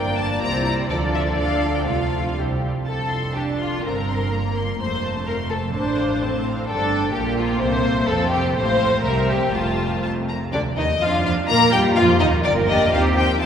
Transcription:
Already playing: double bass section G1, cello section G2, viola section A#3 D4, violin section A#4 D5 G5
0.18 violin section A5
0.42 double bass section C2, cello section C3, viola section G3 E4, violin section C5 A#5
0.65 violin section A#5
0.89 double bass section D2, cello section D3, viola section F3 F4, violin section A4 D5
1.14 violin section E5
1.37 viola section D4, violin section A4 F5
1.76 violin section G5
1.87 double bass section C2, cello section C3, viola section A3 F4, violin section F4 A4 F5
2.37 double bass section C2, cello section C3, viola section G3 E4, violin section G4 C5
2.86 double bass section F1, cello section F2, violin section A4 A5
3.09 violin section C6
3.33 viola section D4, violin section G4 A5
3.59 violin section F4 C6
3.84 double bass section G1, cello section G2, viola section C4, violin section A#4 A#5
4.10 violin section C6
4.32 viola section A#3, violin section A#5
4.56 violin section C6
4.80 double bass section F1, cello section F2, viola section A3, violin section C5 C6
5.04 violin section A5
5.27 violin section A#4 C6
5.50 violin section A4 A5
5.73 double bass section A1, cello section A2, viola section D4, violin section C5 A5
5.98 violin section F5
6.21 viola section C4, violin section A5
6.46 violin section F5
6.67 double bass section G1, cello section G2, viola section D4, violin section A4 G5
7.14 double bass section A#1, cello section A#2, viola section A#3, violin section G4
7.38 violin section F4
7.60 double bass section C2, cello section C3, violin section C5 E5
8.07 double bass section F1, cello section F2, viola section C4, violin section A4 F5
8.29 violin section G4
8.54 double bass section A1, cello section A2, viola section A3, violin section C5 F5
9.03 double bass section C2, cello section C3, viola section G3, violin section A#4 E5
9.29 violin section G4
9.53 double bass section F1, cello section F2, viola section A3, violin section F4 A5
10.03 violin section A5
10.29 violin section A#5
10.53 double bass section D2, viola section D3, violin section D4 D5
10.77 double bass section D#2, viola section D#3, violin section D#4 D#5
11.01 double bass section F2, viola section F3, cello section D4, violin section F4 F5
11.24 double bass section F2, viola section F3, violin section F4 F5
11.49 double bass section A#2, viola section A#3, cello section F4, violin section A#4 A#5
11.72 double bass section G2, viola section G3, violin section G4 G5
11.96 double bass section F2, viola section F3, violin section F4 F5
12.19 double bass section D#2, viola section D#3, violin section D#4 D#5
12.44 double bass section G1, cello section A#4, violin section D5
12.67 viola section A#3 D4, violin section G4 D5 D#5
12.91 double bass section D#2, viola section C4 D#4, violin section G4 C5 F5, cello section G4
13.15 viola section C4 D#4, violin section G4 C5 G5
13.40 double bass section F2, cello section F4, violin section A5

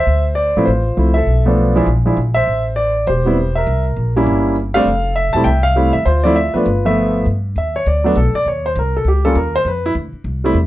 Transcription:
Already playing: grand piano C5 E5
0.07 upright bass D2
0.35 grand piano D5
0.56 upright bass A2, grand piano F3 A3 C4 E4
0.61 grand piano B4 C5
0.67 upright bass A1, grand piano F4
0.97 upright bass C2, grand piano F3 A3 C4 E4
1.14 grand piano A4 E5
1.27 upright bass B1
1.46 grand piano F3 A3 B3 D4
1.76 grand piano F3 G#3 D4 E4
1.86 upright bass A#1
2.06 grand piano F3 G#3 D4 E4
2.17 upright bass A#1
2.34 grand piano C5 E5
2.47 upright bass A1
2.76 grand piano D5
3.07 upright bass E1, grand piano G4 C5
3.25 grand piano G3 B3 C4 E4
3.55 grand piano A#4 E5
3.67 upright bass C2
3.96 upright bass A#1
4.16 grand piano G3 A#3 C#4 E4
4.26 upright bass G1
4.74 grand piano G3 A3 C4 D4 A4 F5
4.85 upright bass F1
5.16 grand piano E5
5.33 upright bass E1, grand piano G3 A3 C4 E4 A5
5.44 upright bass C2, grand piano E5 G5
5.63 grand piano F5
5.76 grand piano G3 A3 C4 E4
5.93 upright bass D#2, grand piano E5
6.05 upright bass D2, grand piano F4 C5
6.24 grand piano F3 A3 C4 E4 D5
6.36 grand piano E5
6.54 upright bass D2, grand piano F3 A3 B3 D4 F4 B4
6.66 upright bass G1
6.85 grand piano F3 A3 B3 E5
7.26 upright bass G2
7.56 upright bass D#2, grand piano E5
7.76 grand piano C#5
7.86 upright bass D2, grand piano D5
8.04 grand piano F#3 A3 B3 D4 F#4
8.16 upright bass B1, grand piano A4
8.34 grand piano D5, muted upright bass stroke
8.46 upright bass D#2, grand piano C#5
8.66 grand piano C5
8.76 upright bass C2, grand piano A#4
8.97 grand piano A4
9.05 upright bass C#2, grand piano G4
9.25 grand piano G3 A#3 C#4 F4 A4
9.35 upright bass D#2, grand piano A#4
9.55 grand piano C5
9.65 upright bass F2, grand piano B4
9.86 grand piano E4
9.95 upright bass D2
10.13 muted upright bass stroke
10.24 upright bass C2
10.44 grand piano G3 A3 C4 E4
10.54 upright bass E2

